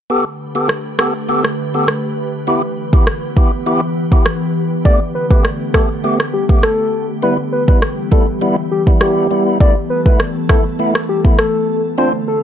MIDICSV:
0, 0, Header, 1, 5, 480
1, 0, Start_track
1, 0, Tempo, 594059
1, 81, Time_signature, 4, 2, 24, 8
1, 10043, End_track
2, 0, Start_track
2, 0, Title_t, "Soft synth lead"
2, 0, Program_c, 0, 80
2, 3919, Note_on_c, 0, 74, 107
2, 4008, Note_off_c, 0, 74, 0
2, 4160, Note_on_c, 0, 71, 76
2, 4248, Note_off_c, 0, 71, 0
2, 4286, Note_on_c, 0, 71, 73
2, 4365, Note_off_c, 0, 71, 0
2, 4640, Note_on_c, 0, 69, 81
2, 4728, Note_off_c, 0, 69, 0
2, 5119, Note_on_c, 0, 67, 79
2, 5207, Note_off_c, 0, 67, 0
2, 5361, Note_on_c, 0, 69, 82
2, 5706, Note_off_c, 0, 69, 0
2, 5840, Note_on_c, 0, 71, 118
2, 5929, Note_off_c, 0, 71, 0
2, 6080, Note_on_c, 0, 71, 78
2, 6169, Note_off_c, 0, 71, 0
2, 6209, Note_on_c, 0, 71, 75
2, 6286, Note_off_c, 0, 71, 0
2, 6559, Note_on_c, 0, 69, 77
2, 6648, Note_off_c, 0, 69, 0
2, 7042, Note_on_c, 0, 67, 78
2, 7129, Note_off_c, 0, 67, 0
2, 7282, Note_on_c, 0, 67, 82
2, 7627, Note_off_c, 0, 67, 0
2, 7761, Note_on_c, 0, 74, 101
2, 7849, Note_off_c, 0, 74, 0
2, 7999, Note_on_c, 0, 71, 80
2, 8088, Note_off_c, 0, 71, 0
2, 8128, Note_on_c, 0, 71, 77
2, 8206, Note_off_c, 0, 71, 0
2, 8481, Note_on_c, 0, 69, 83
2, 8569, Note_off_c, 0, 69, 0
2, 8961, Note_on_c, 0, 67, 76
2, 9049, Note_off_c, 0, 67, 0
2, 9202, Note_on_c, 0, 69, 82
2, 9547, Note_off_c, 0, 69, 0
2, 9680, Note_on_c, 0, 72, 110
2, 9768, Note_off_c, 0, 72, 0
2, 9921, Note_on_c, 0, 69, 83
2, 10009, Note_off_c, 0, 69, 0
2, 10043, End_track
3, 0, Start_track
3, 0, Title_t, "Ambient pad"
3, 0, Program_c, 1, 92
3, 81, Note_on_c, 1, 50, 74
3, 81, Note_on_c, 1, 57, 68
3, 83, Note_on_c, 1, 67, 67
3, 83, Note_on_c, 1, 71, 82
3, 1982, Note_off_c, 1, 50, 0
3, 1982, Note_off_c, 1, 57, 0
3, 1983, Note_off_c, 1, 67, 0
3, 2001, Note_on_c, 1, 52, 76
3, 2002, Note_on_c, 1, 59, 67
3, 2002, Note_on_c, 1, 67, 64
3, 3889, Note_off_c, 1, 71, 0
3, 3902, Note_off_c, 1, 52, 0
3, 3902, Note_off_c, 1, 59, 0
3, 3902, Note_off_c, 1, 67, 0
3, 3919, Note_on_c, 1, 59, 68
3, 3920, Note_on_c, 1, 50, 74
3, 3920, Note_on_c, 1, 67, 84
3, 3921, Note_on_c, 1, 57, 66
3, 5821, Note_off_c, 1, 50, 0
3, 5821, Note_off_c, 1, 59, 0
3, 5822, Note_off_c, 1, 57, 0
3, 5839, Note_on_c, 1, 52, 74
3, 5839, Note_on_c, 1, 55, 67
3, 5840, Note_on_c, 1, 59, 69
3, 7728, Note_off_c, 1, 67, 0
3, 7741, Note_off_c, 1, 55, 0
3, 7741, Note_off_c, 1, 59, 0
3, 7757, Note_on_c, 1, 69, 82
3, 7759, Note_on_c, 1, 57, 65
3, 7759, Note_on_c, 1, 59, 67
3, 9648, Note_off_c, 1, 52, 0
3, 9660, Note_off_c, 1, 69, 0
3, 9661, Note_off_c, 1, 59, 0
3, 9680, Note_on_c, 1, 60, 67
3, 9681, Note_on_c, 1, 50, 73
3, 9681, Note_on_c, 1, 65, 86
3, 10043, Note_off_c, 1, 50, 0
3, 10043, Note_off_c, 1, 57, 0
3, 10043, Note_off_c, 1, 60, 0
3, 10043, Note_off_c, 1, 65, 0
3, 10043, End_track
4, 0, Start_track
4, 0, Title_t, "Tonewheel organ"
4, 0, Program_c, 2, 16
4, 80, Note_on_c, 2, 59, 84
4, 82, Note_on_c, 2, 67, 76
4, 84, Note_on_c, 2, 69, 93
4, 199, Note_off_c, 2, 59, 0
4, 200, Note_off_c, 2, 67, 0
4, 201, Note_off_c, 2, 69, 0
4, 445, Note_on_c, 2, 59, 71
4, 448, Note_on_c, 2, 67, 64
4, 451, Note_on_c, 2, 69, 78
4, 552, Note_off_c, 2, 59, 0
4, 553, Note_off_c, 2, 67, 0
4, 555, Note_off_c, 2, 69, 0
4, 798, Note_on_c, 2, 59, 70
4, 801, Note_on_c, 2, 67, 63
4, 804, Note_on_c, 2, 69, 75
4, 918, Note_off_c, 2, 59, 0
4, 919, Note_off_c, 2, 67, 0
4, 921, Note_off_c, 2, 69, 0
4, 1039, Note_on_c, 2, 59, 91
4, 1041, Note_on_c, 2, 67, 81
4, 1044, Note_on_c, 2, 69, 98
4, 1158, Note_off_c, 2, 59, 0
4, 1159, Note_off_c, 2, 67, 0
4, 1161, Note_off_c, 2, 69, 0
4, 1407, Note_on_c, 2, 59, 76
4, 1409, Note_on_c, 2, 67, 68
4, 1412, Note_on_c, 2, 69, 85
4, 1513, Note_off_c, 2, 59, 0
4, 1513, Note_off_c, 2, 67, 0
4, 1515, Note_off_c, 2, 69, 0
4, 1997, Note_on_c, 2, 59, 89
4, 2001, Note_on_c, 2, 64, 80
4, 2003, Note_on_c, 2, 67, 98
4, 2118, Note_off_c, 2, 59, 0
4, 2119, Note_off_c, 2, 64, 0
4, 2120, Note_off_c, 2, 67, 0
4, 2368, Note_on_c, 2, 59, 72
4, 2369, Note_on_c, 2, 64, 65
4, 2372, Note_on_c, 2, 67, 82
4, 2473, Note_off_c, 2, 59, 0
4, 2474, Note_off_c, 2, 64, 0
4, 2475, Note_off_c, 2, 67, 0
4, 2719, Note_on_c, 2, 59, 71
4, 2722, Note_on_c, 2, 64, 65
4, 2725, Note_on_c, 2, 67, 77
4, 2839, Note_off_c, 2, 59, 0
4, 2840, Note_off_c, 2, 64, 0
4, 2841, Note_off_c, 2, 67, 0
4, 2959, Note_on_c, 2, 59, 94
4, 2961, Note_on_c, 2, 64, 83
4, 2964, Note_on_c, 2, 67, 103
4, 3078, Note_off_c, 2, 59, 0
4, 3079, Note_off_c, 2, 64, 0
4, 3081, Note_off_c, 2, 67, 0
4, 3327, Note_on_c, 2, 59, 72
4, 3330, Note_on_c, 2, 64, 65
4, 3334, Note_on_c, 2, 67, 83
4, 3433, Note_off_c, 2, 59, 0
4, 3434, Note_off_c, 2, 64, 0
4, 3436, Note_off_c, 2, 67, 0
4, 3919, Note_on_c, 2, 57, 85
4, 3922, Note_on_c, 2, 59, 80
4, 3924, Note_on_c, 2, 67, 99
4, 4038, Note_off_c, 2, 57, 0
4, 4040, Note_off_c, 2, 59, 0
4, 4041, Note_off_c, 2, 67, 0
4, 4286, Note_on_c, 2, 57, 73
4, 4289, Note_on_c, 2, 59, 65
4, 4290, Note_on_c, 2, 67, 82
4, 4392, Note_off_c, 2, 57, 0
4, 4393, Note_off_c, 2, 59, 0
4, 4394, Note_off_c, 2, 67, 0
4, 4639, Note_on_c, 2, 57, 66
4, 4641, Note_on_c, 2, 59, 67
4, 4642, Note_on_c, 2, 67, 78
4, 4758, Note_off_c, 2, 57, 0
4, 4759, Note_off_c, 2, 59, 0
4, 4760, Note_off_c, 2, 67, 0
4, 4878, Note_on_c, 2, 57, 94
4, 4881, Note_on_c, 2, 59, 84
4, 4883, Note_on_c, 2, 67, 102
4, 4998, Note_off_c, 2, 57, 0
4, 4999, Note_off_c, 2, 59, 0
4, 5001, Note_off_c, 2, 67, 0
4, 5245, Note_on_c, 2, 57, 71
4, 5247, Note_on_c, 2, 59, 67
4, 5251, Note_on_c, 2, 67, 83
4, 5352, Note_off_c, 2, 57, 0
4, 5353, Note_off_c, 2, 59, 0
4, 5354, Note_off_c, 2, 67, 0
4, 5837, Note_on_c, 2, 55, 91
4, 5840, Note_on_c, 2, 59, 81
4, 5842, Note_on_c, 2, 64, 92
4, 5957, Note_off_c, 2, 55, 0
4, 5959, Note_off_c, 2, 59, 0
4, 5960, Note_off_c, 2, 64, 0
4, 6204, Note_on_c, 2, 55, 74
4, 6206, Note_on_c, 2, 59, 67
4, 6208, Note_on_c, 2, 64, 84
4, 6311, Note_off_c, 2, 55, 0
4, 6312, Note_off_c, 2, 59, 0
4, 6313, Note_off_c, 2, 64, 0
4, 6555, Note_on_c, 2, 55, 69
4, 6558, Note_on_c, 2, 59, 67
4, 6561, Note_on_c, 2, 64, 76
4, 6677, Note_off_c, 2, 55, 0
4, 6678, Note_off_c, 2, 59, 0
4, 6679, Note_off_c, 2, 64, 0
4, 6799, Note_on_c, 2, 55, 90
4, 6801, Note_on_c, 2, 59, 84
4, 6803, Note_on_c, 2, 64, 104
4, 6918, Note_off_c, 2, 55, 0
4, 6919, Note_off_c, 2, 59, 0
4, 6920, Note_off_c, 2, 64, 0
4, 7165, Note_on_c, 2, 55, 73
4, 7167, Note_on_c, 2, 59, 71
4, 7170, Note_on_c, 2, 64, 82
4, 7492, Note_off_c, 2, 55, 0
4, 7493, Note_off_c, 2, 59, 0
4, 7495, Note_off_c, 2, 64, 0
4, 7519, Note_on_c, 2, 55, 72
4, 7522, Note_on_c, 2, 59, 62
4, 7525, Note_on_c, 2, 64, 78
4, 7742, Note_off_c, 2, 55, 0
4, 7743, Note_off_c, 2, 59, 0
4, 7745, Note_off_c, 2, 64, 0
4, 7762, Note_on_c, 2, 57, 88
4, 7763, Note_on_c, 2, 59, 81
4, 7767, Note_on_c, 2, 64, 96
4, 7880, Note_off_c, 2, 57, 0
4, 7881, Note_off_c, 2, 59, 0
4, 7882, Note_off_c, 2, 64, 0
4, 8126, Note_on_c, 2, 57, 76
4, 8128, Note_on_c, 2, 59, 69
4, 8132, Note_on_c, 2, 64, 81
4, 8232, Note_off_c, 2, 57, 0
4, 8233, Note_off_c, 2, 59, 0
4, 8235, Note_off_c, 2, 64, 0
4, 8478, Note_on_c, 2, 57, 72
4, 8480, Note_on_c, 2, 59, 63
4, 8483, Note_on_c, 2, 64, 78
4, 8598, Note_off_c, 2, 57, 0
4, 8599, Note_off_c, 2, 59, 0
4, 8600, Note_off_c, 2, 64, 0
4, 8719, Note_on_c, 2, 57, 93
4, 8722, Note_on_c, 2, 59, 87
4, 8724, Note_on_c, 2, 64, 102
4, 8839, Note_off_c, 2, 57, 0
4, 8840, Note_off_c, 2, 59, 0
4, 8841, Note_off_c, 2, 64, 0
4, 9086, Note_on_c, 2, 57, 73
4, 9088, Note_on_c, 2, 59, 69
4, 9090, Note_on_c, 2, 64, 81
4, 9192, Note_off_c, 2, 57, 0
4, 9193, Note_off_c, 2, 59, 0
4, 9194, Note_off_c, 2, 64, 0
4, 9678, Note_on_c, 2, 60, 88
4, 9680, Note_on_c, 2, 62, 78
4, 9682, Note_on_c, 2, 65, 98
4, 9798, Note_off_c, 2, 60, 0
4, 9799, Note_off_c, 2, 62, 0
4, 9800, Note_off_c, 2, 65, 0
4, 10043, End_track
5, 0, Start_track
5, 0, Title_t, "Drums"
5, 559, Note_on_c, 9, 37, 78
5, 640, Note_off_c, 9, 37, 0
5, 798, Note_on_c, 9, 37, 98
5, 879, Note_off_c, 9, 37, 0
5, 1168, Note_on_c, 9, 37, 82
5, 1248, Note_off_c, 9, 37, 0
5, 1520, Note_on_c, 9, 37, 85
5, 1600, Note_off_c, 9, 37, 0
5, 2367, Note_on_c, 9, 36, 90
5, 2448, Note_off_c, 9, 36, 0
5, 2480, Note_on_c, 9, 37, 84
5, 2561, Note_off_c, 9, 37, 0
5, 2720, Note_on_c, 9, 36, 86
5, 2801, Note_off_c, 9, 36, 0
5, 3327, Note_on_c, 9, 36, 80
5, 3408, Note_off_c, 9, 36, 0
5, 3439, Note_on_c, 9, 37, 90
5, 3520, Note_off_c, 9, 37, 0
5, 3921, Note_on_c, 9, 36, 100
5, 4001, Note_off_c, 9, 36, 0
5, 4287, Note_on_c, 9, 36, 93
5, 4368, Note_off_c, 9, 36, 0
5, 4401, Note_on_c, 9, 37, 84
5, 4482, Note_off_c, 9, 37, 0
5, 4639, Note_on_c, 9, 36, 85
5, 4640, Note_on_c, 9, 37, 98
5, 4720, Note_off_c, 9, 36, 0
5, 4721, Note_off_c, 9, 37, 0
5, 5009, Note_on_c, 9, 37, 85
5, 5089, Note_off_c, 9, 37, 0
5, 5246, Note_on_c, 9, 36, 85
5, 5327, Note_off_c, 9, 36, 0
5, 5359, Note_on_c, 9, 37, 87
5, 5440, Note_off_c, 9, 37, 0
5, 6206, Note_on_c, 9, 36, 93
5, 6287, Note_off_c, 9, 36, 0
5, 6320, Note_on_c, 9, 37, 83
5, 6401, Note_off_c, 9, 37, 0
5, 6559, Note_on_c, 9, 36, 83
5, 6640, Note_off_c, 9, 36, 0
5, 7166, Note_on_c, 9, 36, 80
5, 7247, Note_off_c, 9, 36, 0
5, 7279, Note_on_c, 9, 37, 93
5, 7360, Note_off_c, 9, 37, 0
5, 7760, Note_on_c, 9, 36, 99
5, 7841, Note_off_c, 9, 36, 0
5, 8126, Note_on_c, 9, 36, 89
5, 8207, Note_off_c, 9, 36, 0
5, 8240, Note_on_c, 9, 37, 83
5, 8320, Note_off_c, 9, 37, 0
5, 8479, Note_on_c, 9, 36, 86
5, 8479, Note_on_c, 9, 37, 94
5, 8560, Note_off_c, 9, 36, 0
5, 8560, Note_off_c, 9, 37, 0
5, 8849, Note_on_c, 9, 37, 85
5, 8930, Note_off_c, 9, 37, 0
5, 9087, Note_on_c, 9, 36, 86
5, 9167, Note_off_c, 9, 36, 0
5, 9200, Note_on_c, 9, 37, 88
5, 9281, Note_off_c, 9, 37, 0
5, 10043, End_track
0, 0, End_of_file